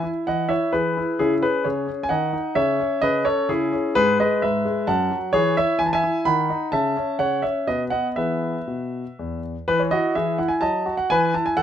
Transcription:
Already playing: E5
0.03 E4
0.27 E3 D#5 F#5
0.49 E4 C#5 E5
0.73 E3 G#4 B4
0.97 E4
1.19 C#3 E4 G#4
1.42 C#4 G#4 B4
1.64 C#3 G#4 C#5
1.87 C#4
2.03 G#5
2.09 D#3 D#5 F#5
2.33 D#4
2.55 C#3 C#5 E5
2.80 C#4
3.02 C#3 B4 D#5
3.25 C#4 A4 C#5
3.49 C#3 E4 G#4
3.73 C#4
3.95 G#2 G#4 B4
4.20 G#3 B4 D#5
4.42 G#2 B4 E5
4.65 G#3
4.87 F#2 F#5 A5
5.11 F#3
5.33 E3 G#4 C#5
5.57 E4 C#5 E5
5.79 E3 G#5
5.86 A5
5.93 E5 G#5
6.04 E4
6.25 D#3 F#5 B5
6.50 D#4
6.72 C#3 E5 A5
6.97 C#4
7.19 C#3 C#5 F#5
7.42 C#4 C#5 E5
7.67 B2 B4 D#5
7.90 B3 D#5 F#5
8.16 E3 B3 G#4 B4 E5
8.67 B2
9.19 E2
9.68 E3 B4
9.79 C#5
9.91 E4 F#4 D#5
10.15 E3 G#4 E5
10.38 E4 F#5
10.48 G#5
10.61 F#3 D#5 A5
10.86 F#4
10.97 F#5
11.10 E3 B4 G#5
11.34 E4 A5
11.46 G#5
11.57 E3 A4 F#5

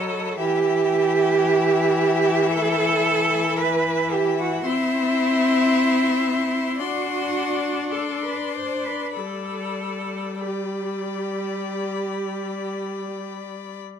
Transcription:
Already playing: F#3 A4 D#5 B5
0.38 E3 G4 E5 B5
2.50 A4
3.59 B4
4.12 G4
4.39 F#4
4.66 C4 E4 E5 C6
6.78 D4 F#4 D5 C6
7.92 A4 D5 C6
8.22 B4
8.54 C5
8.85 B4
9.15 G3 A4 D5 B5
10.40 G4 D5 B5

